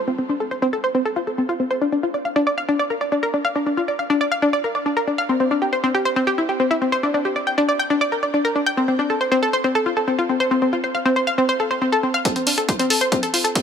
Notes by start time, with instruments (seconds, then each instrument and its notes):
0.08 synth pluck C4
0.18 synth pluck C4
0.29 synth pluck D4
0.40 synth pluck A4
0.51 synth pluck C5
0.62 synth pluck C4
0.73 synth pluck A4
0.84 synth pluck C5
0.95 synth pluck C4
1.05 synth pluck A4
1.16 synth pluck F4
1.27 synth pluck A4
1.38 synth pluck C4
1.49 synth pluck F4
1.60 synth pluck C4
1.71 synth pluck C5
1.81 synth pluck D4
1.92 synth pluck D4
2.03 synth pluck F4
2.14 synth pluck D5
2.25 synth pluck F5
2.36 synth pluck D4
2.47 synth pluck D5
2.58 synth pluck F5
2.69 synth pluck D4
2.79 synth pluck D5
2.90 synth pluck A#4
3.01 synth pluck D5
3.12 synth pluck D4
3.23 synth pluck A#4
3.34 synth pluck D4
3.45 synth pluck F5
3.55 synth pluck D4
3.66 synth pluck D4
3.77 synth pluck F4
3.88 synth pluck D5
3.99 synth pluck F5
4.10 synth pluck D4
4.21 synth pluck D5
4.32 synth pluck F5
4.42 synth pluck D4
4.53 synth pluck D5
4.64 synth pluck A#4
4.75 synth pluck D5
4.86 synth pluck D4
4.97 synth pluck A#4
5.07 synth pluck D4
5.18 synth pluck F5
5.29 synth pluck C4
5.40 synth pluck C4
5.51 synth pluck D4
5.62 synth pluck G4
5.73 synth pluck C5
5.84 synth pluck C4
5.94 synth pluck G4
6.05 synth pluck C5
6.16 synth pluck C4
6.27 synth pluck G4
6.38 synth pluck E4
6.49 synth pluck G4
6.60 synth pluck C4
6.71 synth pluck E4
6.82 synth pluck C4
6.92 synth pluck C5
7.03 synth pluck D4
7.14 synth pluck D4
7.25 synth pluck G4
7.36 synth pluck D5
7.47 synth pluck G5
7.58 synth pluck D4
7.69 synth pluck D5
7.79 synth pluck G5
7.90 synth pluck D4
8.01 synth pluck D5
8.12 synth pluck A#4
8.23 synth pluck D5
8.34 synth pluck D4
8.45 synth pluck A#4
8.56 synth pluck D4
8.66 synth pluck G5
8.77 synth pluck C4
8.88 synth pluck C4
8.99 synth pluck D4
9.10 synth pluck A4
9.21 synth pluck C5
9.32 synth pluck C4
9.43 synth pluck A4
9.53 synth pluck C5
9.64 synth pluck C4
9.75 synth pluck A4
9.86 synth pluck F4
9.97 synth pluck A4
10.08 synth pluck C4
10.19 synth pluck F4
10.29 synth pluck C4
10.40 synth pluck C5
10.51 synth pluck C4
10.62 synth pluck C4
10.73 synth pluck F4
10.84 synth pluck C5
10.95 synth pluck F5
11.05 synth pluck C4
11.16 synth pluck C5
11.27 synth pluck F5
11.38 synth pluck C4
11.49 synth pluck C5
11.60 synth pluck A4
11.71 synth pluck C5
11.82 synth pluck C4
11.92 synth pluck A4
12.03 synth pluck C4
12.14 synth pluck F5
12.25 synth pluck C4, kick, closed hi-hat
12.36 synth pluck C4, closed hi-hat
12.47 synth pluck D4, open hi-hat
12.58 synth pluck A4, closed hi-hat
12.69 synth pluck C5, kick, closed hi-hat
12.79 synth pluck C4, closed hi-hat
12.90 synth pluck A4, open hi-hat
13.01 synth pluck C5, closed hi-hat
13.12 synth pluck C4, kick, closed hi-hat
13.23 synth pluck A4, closed hi-hat
13.34 synth pluck F4, open hi-hat
13.44 synth pluck A4, closed hi-hat
13.55 synth pluck C4, kick, closed hi-hat